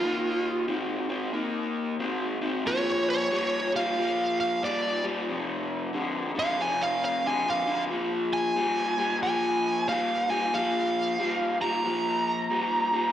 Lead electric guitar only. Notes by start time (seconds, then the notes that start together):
Already playing: F4
2.67 C#5
3.10 C#5
3.76 F5
4.40 F5
4.64 D5
6.39 F5
6.62 G#5
6.83 F5
7.05 F5
7.27 G#5
7.50 F5
8.33 G#5
9.23 G#5
9.89 F5
10.30 G#5
10.54 F5
11.62 A#5